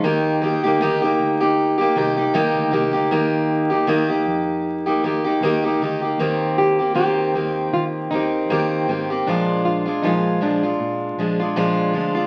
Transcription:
X:1
M:4/4
L:1/16
Q:"Swing 16ths" 1/4=78
K:Eb
V:1 name="Nylon-string guitar"
E12 z4 | z16 | z2 G2 G4 F2 E6 | D2 F2 E2 D8 z2 |]
V:2 name="Steel-string acoustic guitar"
[E,B,EG]2 [E,B,EG] [B,EG] [E,B,EG] [B,EG]2 [B,EG]2 [B,EG] [E,B,EG] [B,EG] [E,B,EG]2 [E,B,EG] [B,EG] | [E,B,EG]3 [B,EG] [E,B,EG] [B,EG]4 [B,EG] [E,B,EG] [B,EG] [E,B,EG] [B,EG] [E,B,EG] [B,EG] | [E,B,CG]3 [B,CG] [E,B,CG]2 [E,B,CG]4 [E,B,CG]2 [E,B,CG]2 [E,B,CG] [B,CG] | [B,,F,A,DF]3 [A,DF] [B,,F,A,F]2 [F,A,DF] [A,DF]3 [F,A,DF] [A,DF] [B,,F,A,DF]2 [F,A,DF] [A,DF] |]
V:3 name="Fingered electric bass" clef=bass
E,,3 D,,3 D,,4 C,,2 z D,, C,, D,, | E,,6 F,,6 E,,2 D,,2 | E,,6 E,,2 E,2 E,,2 E,,2 A,,,2 | B,,,6 B,,,2 B,,2 B,,,4 D,,2 |]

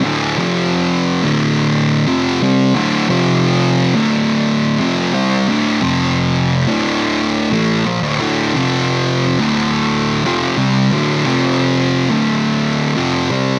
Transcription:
X:1
M:4/4
L:1/16
Q:1/4=88
K:Dm
V:1 name="Distorted electric guitar" clef=bass
[D,,A,,D,]2 [F,,C,F,]4- [F,,C,F,] [D,,A,,D,]4- [D,,A,,D,] [F,,C,F,]2 [C,G,C]2 | [D,,A,,D,]2 [F,,C,F,]4- [F,,C,F,] [D,,A,,D,]4- [D,,A,,D,] [F,,C,F,]2 [C,G,C]2 | [D,,A,,D,]2 [F,,C,F,]4- [F,,C,F,] [D,,A,,D,]4- [D,,A,,D,] [A,,E,A,]2 [B,,F,] [D,,A,,] | [D,,A,,D,]2 [F,,C,F,]4- [F,,C,F,] [D,,A,,D,]4- [D,,A,,D,] [F,,C,F,]2 [C,G,C]2 |
[D,,A,,D,]2 [F,,C,F,]4- [F,,C,F,] [D,,A,,D,]4- [D,,A,,D,] [F,,C,F,]2 [C,G,C]2 |]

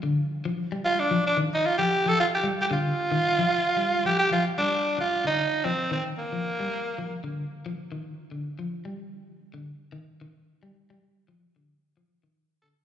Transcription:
X:1
M:4/4
L:1/16
Q:"Swing 16ths" 1/4=112
K:Gm
V:1 name="Tenor saxophone"
z6 F D2 D2 E F G2 A | F G2 G F8- F2 G G | F2 D3 F2 E3 C2 C2 B,2- | B,6 z8 z2 |
z16 | z12 z2 A z |]
V:2 name="Clean electric guitar" clef=bass
D,2 z F,2 G,2 z F,2 E,2 z F,2 F,- | F, z G,2 D,2 z E,2 F,2 z G,2 F,2 | F,2 G,2 z3 D,2 z F,2 E,2 z F,- | F, G,2 z F,2 D,2 z F,2 E,2 z D,2 |
F,2 G,2 z3 D,2 z E,2 E,2 z G,- | G, G,2 z F,2 D,2 z F,2 E,2 z D,2 |]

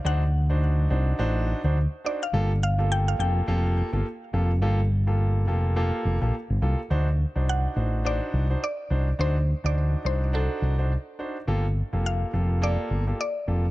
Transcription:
X:1
M:4/4
L:1/16
Q:"Swing 16ths" 1/4=105
K:Dphr
V:1 name="Synth pluck"
^f12 z2 d =f- | f2 f2 g f g8- g2- | g12 z4 | z4 ^f4 d4 d4 |
c3 d3 c2 A6 z2 | z4 f4 d4 d4 |]
V:2 name="Grand piano"
[DE^Fc] z2 [DEFc]3 [DEFc]2 [DEFc]3 [DEFc] z2 [DEFc] z | [B,FGA] z2 [B,FGA]3 [B,FGA]2 [B,FGA]3 [B,FGA] z2 [B,FGA] z | [B,FGA] z2 [B,FGA]3 [B,FGA]2 [B,FGA]3 [B,FGA] z2 [B,FGA] z | [DE^Fc] z2 [DEFc]3 [DEFc]2 [DEFc]3 [DEFc] z2 [DEFc] z |
[DE^Fc] z2 [DEFc]3 [DEFc]2 [DEFc]3 [DEFc] z2 [DEFc] z | [B,FGA] z2 [B,FGA]3 [B,FGA]2 [B,FGA]3 [B,FGA] z2 [B,FGA] z |]
V:3 name="Fingered electric bass" clef=bass
D,,6 C,,2 A,,,3 D,,2 z3 | G,,,6 F,,,2 F,,,3 G,,, z2 F,,,2 | G,,,6 F,,,4 F,,, B,,, z G,,, C,, z | D,,3 C,,3 A,,,4 C,,2 z2 C,,2 |
D,,3 D,,3 C,,4 C,,3 z3 | G,,,3 F,,,3 F,,,4 G,,,2 z2 F,,,2 |]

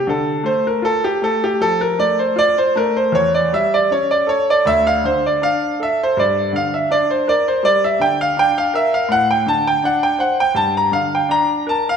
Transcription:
X:1
M:4/4
L:1/16
Q:1/4=80
K:Dm
V:1 name="Grand piano"
A2 c B A G A G A B d c d c B c | ^c d e d c d c d e f =c d f2 e c | d2 f e d c d c d e g f g f e f | ^f g a g f g f g a b =f g b2 a f |]
V:2 name="Grand piano"
D,2 A,2 F2 A,2 F,2 A,2 F2 A,2 | E,,2 G,2 ^C2 A2 D,,2 D,2 D2 A2 | G,,2 D,2 D2 B2 G,2 D,2 D2 B2 | A,,2 D,2 D2 c2 G,,2 D,2 D2 B2 |]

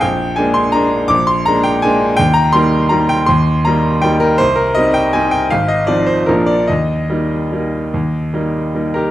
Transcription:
X:1
M:3/4
L:1/8
Q:1/4=161
K:Eb
V:1 name="Grand piano"
g2 a c' b2 | d' c' b g a2 | g b c'2 b g | c'2 b2 g B |
c B e g a g | f e d c B d | e6- | e4- e [GB] |]
V:2 name="Grand piano"
B,,,2 [A,B,D]2 [A,B,D]2 | B,,,2 [A,B,D]2 [A,B,D]2 | E,,2 [G,B,E]2 [G,B,E]2 | E,,2 [G,B,E]2 [G,B,E]2 |
C,,2 [G,CE]2 [G,CE]2 | A,,,2 [F,CE]2 [B,,,F,B,D]2 | E,,2 [G,B,E]2 [G,B,E]2 | E,,2 [G,B,E]2 [G,B,E]2 |]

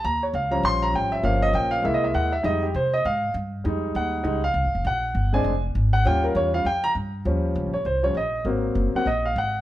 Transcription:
X:1
M:4/4
L:1/8
Q:"Swing" 1/4=200
K:Ebmix
V:1 name="Grand piano"
b d f b c' b g _f | f e g f (3=e ^d e _g e | e G c e f2 z2 | z2 _g3 f3 |
_g3 a2 z2 g | g B d f g b z2 | z3 d c d e2 | z3 _g e f g2 |]
V:2 name="Grand piano"
z3 [F,G,D]4- [F,G,D] | [F,B,D]4 [^G,B,=E]3 z | [G,A,E] z6 z | [G,A,E]4 [G,A,E] z3 |
z3 [A,C=D] z4 | [G,DF]3 [G,DF] z4 | [F,G,D]3 z2 [F,G,D] z2 | [_G,B,C]3 [G,B,C] z4 |]
V:3 name="Upright bass" clef=bass
E,,2 D,,2 B,,,2 A,,,2 | G,,,2 B,,,2 C,,2 ^D,,2 | F,,2 C,2 A,,2 G,,2 | F,,2 E,,2 D,,2 (3C,, A,,, F,,, |
B,,,2 G,,,2 F,,,2 A,,,2 | E,,2 _F,,2 =F,,2 G,,2 | E,,2 (3D,, B,,, G,,, C,,2 B,,,2 | A,,,2 _G,,, z B,,,2 A,,,2 |]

